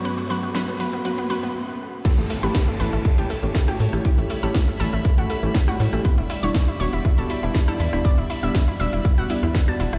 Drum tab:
CC |----------------|x---------------|----------------|----------------|
HH |xxoxxxoxxxox----|xxoxxxoxxxoxxxox|xxoxxxoxxxoxxxox|xxoxxxoxxxoxxxox|
SD |----o-----------|----o-------or-r|----o-------or-r|----o-------or-r|
BD |----------------|o---o---o---o---|o---o---o---o---|o---o---o---o---|

CC |----------------|
HH |xxoxxxoxxxoxxxox|
SD |----o-------or-r|
BD |o---o---o---o---|